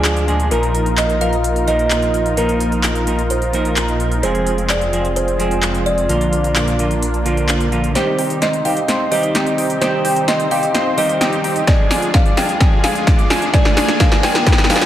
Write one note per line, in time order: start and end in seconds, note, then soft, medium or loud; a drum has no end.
0.00 0.49 D2 medium
0.00 0.48 D3 medium
0.00 0.25 F3 medium
0.00 0.25 G#3 medium
0.00 0.25 D4 medium
0.00 0.48 D4 medium
0.00 0.49 D4 medium
0.00 0.49 F4 medium
0.00 7.91 F4 medium
0.00 0.25 G#4 loud
0.00 0.49 G#4 medium
0.00 0.49 G5 medium
0.05 clap loud
0.05 closed hi-hat medium
0.17 closed hi-hat soft
0.27 0.48 A#2 medium
0.27 0.48 F3 medium
0.27 0.48 G#3 medium
0.27 0.49 D4 medium
0.27 0.49 G#4 loud
0.27 closed hi-hat soft
0.40 closed hi-hat soft
0.50 4.21 A#1 medium
0.50 1.18 A#2 medium
0.50 1.18 F3 medium
0.50 4.20 A#3 medium
0.50 1.18 A#3 medium
0.50 4.20 D#4 medium
0.50 4.21 D#4 medium
0.50 1.19 D#4 medium
0.50 4.21 F4 medium
0.50 0.99 A#4 medium
0.50 4.21 A#4 medium
0.50 1.19 A#4 medium
0.50 closed hi-hat medium
0.63 closed hi-hat soft
0.75 closed hi-hat medium
0.86 closed hi-hat soft
0.98 1.20 D#5 loud
0.98 clap loud
0.98 closed hi-hat medium
1.09 closed hi-hat soft
1.20 1.35 A#2 medium
1.20 1.35 F3 medium
1.20 1.35 A#3 medium
1.20 1.35 D#4 medium
1.20 1.35 A#4 medium
1.20 1.64 F5 loud
1.20 closed hi-hat medium
1.33 closed hi-hat soft
1.44 closed hi-hat medium
1.56 closed hi-hat soft
1.66 2.34 A#2 medium
1.66 2.34 F3 medium
1.66 2.35 A#3 medium
1.66 2.35 D#4 medium
1.66 2.35 A#4 medium
1.66 2.33 D#5 loud
1.66 closed hi-hat medium
1.79 closed hi-hat soft
1.91 clap loud
1.91 closed hi-hat medium
2.02 closed hi-hat soft
2.14 closed hi-hat soft
2.26 closed hi-hat soft
2.36 3.04 A#2 medium
2.36 3.04 F3 medium
2.36 3.04 A#3 medium
2.36 3.05 D#4 medium
2.36 3.33 A#4 medium
2.36 3.05 A#4 medium
2.36 closed hi-hat medium
2.49 closed hi-hat soft
2.60 closed hi-hat medium
2.72 closed hi-hat soft
2.83 clap loud
2.83 closed hi-hat medium
2.95 closed hi-hat soft
3.06 3.21 A#2 medium
3.06 3.21 F3 medium
3.06 3.21 A#3 medium
3.06 3.21 D#4 medium
3.06 3.21 A#4 medium
3.06 closed hi-hat medium
3.19 closed hi-hat soft
3.30 3.74 C5 medium
3.30 closed hi-hat medium
3.42 closed hi-hat soft
3.52 4.20 A#2 medium
3.52 4.20 F3 medium
3.52 4.21 A#3 medium
3.52 4.21 D#4 medium
3.52 4.21 A#4 loud
3.52 closed hi-hat medium
3.65 closed hi-hat soft
3.76 clap loud
3.76 closed hi-hat medium
3.88 closed hi-hat soft
4.00 closed hi-hat soft
4.12 closed hi-hat soft
4.22 6.07 F1 medium
4.22 4.90 F3 medium
4.22 4.90 G#3 medium
4.22 6.08 G#3 medium
4.22 6.08 C4 medium
4.22 6.07 C4 medium
4.22 4.91 C4 medium
4.22 6.07 F4 medium
4.22 6.07 G#4 medium
4.22 4.91 G#4 medium
4.22 4.71 C5 medium
4.22 closed hi-hat medium
4.35 closed hi-hat soft
4.47 closed hi-hat medium
4.58 closed hi-hat soft
4.70 5.18 D5 loud
4.70 clap loud
4.70 closed hi-hat medium
4.81 closed hi-hat soft
4.93 5.07 F3 medium
4.93 5.07 G#3 medium
4.93 5.07 C4 medium
4.93 5.07 G#4 medium
4.93 closed hi-hat medium
5.05 closed hi-hat soft
5.16 5.60 C5 medium
5.16 closed hi-hat medium
5.28 closed hi-hat soft
5.38 6.06 F3 medium
5.38 6.06 G#3 medium
5.38 6.07 C4 medium
5.38 6.07 G#4 loud
5.38 closed hi-hat medium
5.51 closed hi-hat soft
5.63 clap loud
5.63 closed hi-hat medium
5.75 closed hi-hat soft
5.86 7.45 D5 loud
5.86 closed hi-hat soft
5.98 closed hi-hat soft
6.08 7.93 A#1 medium
6.08 6.76 D3 medium
6.08 6.76 F3 medium
6.08 7.94 A#3 medium
6.08 7.93 A#3 medium
6.08 6.77 A#3 medium
6.08 7.94 D4 medium
6.08 7.93 D4 medium
6.08 7.93 F4 medium
6.08 6.77 F4 medium
6.08 closed hi-hat medium
6.21 closed hi-hat soft
6.33 closed hi-hat medium
6.44 closed hi-hat soft
6.56 clap loud
6.56 closed hi-hat medium
6.68 closed hi-hat soft
6.78 6.93 D3 medium
6.78 6.93 F3 medium
6.78 6.93 A#3 medium
6.78 6.93 F4 medium
6.78 closed hi-hat medium
6.91 closed hi-hat soft
7.03 closed hi-hat medium
7.14 closed hi-hat soft
7.25 7.69 D3 medium
7.25 7.69 F3 medium
7.25 7.69 A#3 medium
7.25 7.70 F4 medium
7.25 closed hi-hat medium
7.37 closed hi-hat soft
7.49 clap loud
7.49 closed hi-hat medium
7.61 closed hi-hat soft
7.71 7.92 D3 medium
7.71 7.93 F3 medium
7.71 7.93 A#3 medium
7.71 7.93 F4 medium
7.71 closed hi-hat soft
7.84 closed hi-hat soft
7.94 11.64 C2 medium
7.94 11.64 C3 medium
7.94 8.62 D#3 medium
7.94 8.62 G3 medium
7.94 8.16 C4 medium
7.94 8.63 C4 medium
7.94 11.64 D#4 medium
7.94 8.16 D#4 medium
7.94 11.64 G4 medium
7.94 8.16 G4 loud
7.94 8.63 G4 loud
7.94 8.43 C5 medium
7.94 8.16 G5 loud
7.94 snare soft
7.94 closed hi-hat medium
7.94 riser medium
8.19 8.39 C4 medium
8.19 8.39 D#4 medium
8.19 8.39 G4 medium
8.19 8.39 G5 medium
8.19 open hi-hat loud
8.30 closed hi-hat medium
8.42 8.62 C4 medium
8.42 8.62 D#4 medium
8.42 8.62 C5 medium
8.42 8.66 D#5 medium
8.42 8.62 C6 medium
8.42 snare soft
8.42 closed hi-hat medium
8.53 closed hi-hat soft
8.64 8.79 D#3 medium
8.64 8.79 G3 medium
8.64 8.84 C4 medium
8.64 8.79 C4 medium
8.64 8.84 D#4 medium
8.64 8.84 G4 medium
8.64 8.79 G4 medium
8.64 9.13 F5 medium
8.64 8.84 G5 medium
8.64 open hi-hat medium
8.77 closed hi-hat medium
8.88 9.09 C4 medium
8.88 9.09 D#4 medium
8.88 9.09 C5 medium
8.88 9.09 C6 medium
8.88 snare medium
8.88 closed hi-hat medium
9.11 9.78 D#3 medium
9.11 9.79 G3 medium
9.11 9.32 C4 medium
9.11 9.79 C4 medium
9.11 9.32 D#4 medium
9.11 9.32 G4 medium
9.11 9.79 G4 loud
9.11 9.78 D#5 medium
9.11 9.31 G5 medium
9.11 open hi-hat loud
9.23 closed hi-hat medium
9.35 9.53 C4 loud
9.35 9.53 D#4 medium
9.35 9.53 G4 loud
9.35 9.53 G5 loud
9.35 snare medium
9.35 closed hi-hat medium
9.47 closed hi-hat soft
9.58 9.79 C4 medium
9.58 9.79 D#4 medium
9.58 9.79 G4 medium
9.58 9.79 G5 medium
9.58 open hi-hat medium
9.70 closed hi-hat medium
9.80 10.48 D#3 medium
9.80 10.48 G3 medium
9.80 10.02 C4 medium
9.80 10.49 C4 medium
9.80 10.02 D#4 medium
9.80 10.02 G4 medium
9.80 10.49 G4 loud
9.80 10.25 C5 medium
9.80 10.02 G5 loud
9.80 snare medium
9.80 closed hi-hat medium
10.05 10.25 C4 medium
10.05 10.25 D#4 medium
10.05 10.25 G4 loud
10.05 10.25 G5 medium
10.05 open hi-hat loud
10.16 closed hi-hat medium
10.28 10.48 C4 medium
10.28 10.48 D#4 medium
10.28 10.48 C5 medium
10.28 10.52 D#5 medium
10.28 10.48 C6 medium
10.28 snare medium
10.28 closed hi-hat medium
10.40 closed hi-hat soft
10.51 10.65 D#3 medium
10.51 10.65 G3 medium
10.51 10.70 C4 medium
10.51 10.65 C4 medium
10.51 10.70 D#4 medium
10.51 10.70 G4 medium
10.51 10.65 G4 medium
10.51 10.99 F5 loud
10.51 10.70 G5 medium
10.51 open hi-hat medium
10.63 closed hi-hat medium
10.74 10.95 C4 medium
10.74 10.95 D#4 medium
10.74 10.95 C5 loud
10.74 10.95 C6 loud
10.74 snare medium
10.74 closed hi-hat medium
10.96 11.64 D#3 medium
10.96 11.65 G3 medium
10.96 11.18 C4 medium
10.96 11.65 C4 medium
10.96 11.18 D#4 medium
10.96 11.18 G4 medium
10.96 11.65 G4 loud
10.96 11.70 D#5 loud
10.96 11.18 G5 medium
10.96 open hi-hat loud
11.09 closed hi-hat medium
11.21 11.39 C4 loud
11.21 11.39 D#4 medium
11.21 11.39 G4 loud
11.21 11.39 G5 loud
11.21 snare medium
11.21 closed hi-hat medium
11.33 closed hi-hat soft
11.44 11.65 C4 medium
11.44 11.65 D#4 medium
11.44 11.65 G4 medium
11.44 11.65 G5 medium
11.44 open hi-hat medium
11.56 closed hi-hat medium
11.66 14.86 D2 medium
11.66 14.86 D3 medium
11.66 12.34 F3 medium
11.66 12.34 G#3 medium
11.66 11.88 D4 medium
11.66 12.35 D4 medium
11.66 14.86 F4 medium
11.66 11.88 F4 medium
11.66 14.86 G#4 medium
11.66 11.88 G#4 medium
11.66 12.35 G#4 medium
11.66 12.15 D5 loud
11.66 11.88 G#5 medium
11.66 kick loud
11.66 snare medium
11.66 closed hi-hat medium
11.91 12.11 D4 medium
11.91 12.11 F4 medium
11.91 12.11 G#4 medium
11.91 12.11 G#5 medium
11.91 snare medium
11.91 open hi-hat loud
12.02 closed hi-hat soft
12.14 12.35 D4 medium
12.14 12.35 F4 medium
12.14 12.35 D5 medium
12.14 12.38 F5 loud
12.14 12.35 D6 medium
12.14 kick loud
12.14 snare medium
12.14 closed hi-hat medium
12.26 closed hi-hat soft
12.37 12.51 F3 medium
12.37 12.51 G#3 medium
12.37 12.51 D4 medium
12.37 12.56 D4 medium
12.37 12.56 F4 medium
12.37 12.56 G#4 medium
12.37 12.51 G#4 medium
12.37 12.85 G5 loud
12.37 12.56 G#5 medium
12.37 snare medium
12.37 open hi-hat medium
12.49 closed hi-hat soft
12.59 13.27 F3 medium
12.59 13.27 G#3 medium
12.59 12.81 D4 medium
12.59 13.28 D4 medium
12.59 12.81 F4 medium
12.59 12.81 G#4 medium
12.59 13.28 G#4 medium
12.59 12.81 G#5 medium
12.59 kick loud
12.59 snare medium
12.59 closed hi-hat medium
12.84 13.04 D4 medium
12.84 13.04 F4 medium
12.84 13.04 G#4 loud
12.84 13.56 F5 loud
12.84 13.04 G#5 medium
12.84 snare medium
12.84 open hi-hat loud
12.95 closed hi-hat medium
13.07 13.28 D4 medium
13.07 13.28 F4 medium
13.07 13.28 D5 medium
13.07 13.28 D6 medium
13.07 kick loud
13.07 snare medium
13.07 closed hi-hat medium
13.19 closed hi-hat soft
13.30 13.44 F3 medium
13.30 13.44 G#3 medium
13.30 13.49 D4 medium
13.30 13.44 D4 medium
13.30 13.49 F4 medium
13.30 13.49 G#4 medium
13.30 13.45 G#4 medium
13.30 13.49 G#5 medium
13.30 snare medium
13.30 open hi-hat loud
13.42 closed hi-hat medium
13.52 13.98 F3 medium
13.52 13.98 G#3 medium
13.52 13.74 D4 medium
13.52 13.98 D4 medium
13.52 13.74 F4 medium
13.52 13.74 G#4 loud
13.52 13.99 G#4 loud
13.52 14.02 D5 loud
13.52 13.74 G#5 loud
13.52 kick loud
13.52 snare medium
13.52 closed hi-hat medium
13.65 snare medium
13.77 13.97 D4 medium
13.77 13.97 F4 medium
13.77 13.97 G#4 medium
13.77 13.97 G#5 loud
13.77 snare medium
13.77 open hi-hat loud
13.88 snare medium
13.88 closed hi-hat medium
13.99 14.44 F3 medium
13.99 14.45 G#3 medium
13.99 14.21 D4 medium
13.99 14.45 D4 medium
13.99 14.21 F4 medium
13.99 14.21 G#4 loud
13.99 14.45 G#4 loud
13.99 14.22 F5 loud
13.99 14.21 G#5 loud
13.99 kick loud
13.99 snare loud
13.99 closed hi-hat medium
14.12 snare medium
14.12 closed hi-hat soft
14.23 14.44 D4 medium
14.23 14.44 F4 medium
14.23 14.44 G#4 medium
14.23 14.71 G5 loud
14.23 14.44 G#5 loud
14.23 snare loud
14.23 open hi-hat medium
14.35 snare medium
14.35 closed hi-hat medium
14.45 14.67 F3 loud
14.45 14.68 G#3 medium
14.45 14.67 D4 medium
14.45 14.68 D4 medium
14.45 14.67 F4 medium
14.45 14.67 G#4 loud
14.45 14.69 G#4 loud
14.45 14.67 G#5 loud
14.45 kick loud
14.45 snare loud
14.45 closed hi-hat medium
14.52 snare medium
14.58 snare medium
14.58 closed hi-hat soft
14.64 snare medium
14.69 14.86 F3 loud
14.69 14.86 G#3 medium
14.69 14.86 D4 medium
14.69 14.86 F4 medium
14.69 14.86 G#4 loud
14.69 14.86 F5 loud
14.69 14.86 G#5 loud
14.69 snare loud
14.69 open hi-hat loud
14.76 snare medium
14.81 snare medium
14.81 closed hi-hat soft